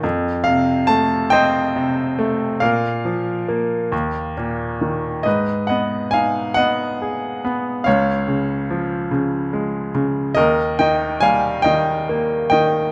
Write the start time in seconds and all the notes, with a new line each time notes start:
0.03 F2
0.44 C3 F5
0.87 A3 A5
1.30 C4 C5 D#5 G5
1.76 C3
2.19 A3
2.60 A#2 A#4 F5
3.05 F3
3.48 A#3
3.92 D#2
4.37 A#2
4.81 D#3
5.23 G#2 B4 D#5
5.67 B3 D#5 F#5
6.11 D#4 F5 G#5
6.54 D#5 F#5
6.59 B3
7.02 G#4
7.45 B3
7.84 C#2 C#5 F5
8.28 C#3
8.70 F3
9.11 C#3
9.53 G#3
9.95 C#3
10.35 D#2 A#4 D#5
10.79 D#3 D#5 G5
11.20 G3 F5 G#5
11.62 D#3 D#5 G5
12.09 A#3
12.50 D#3 D#5 G5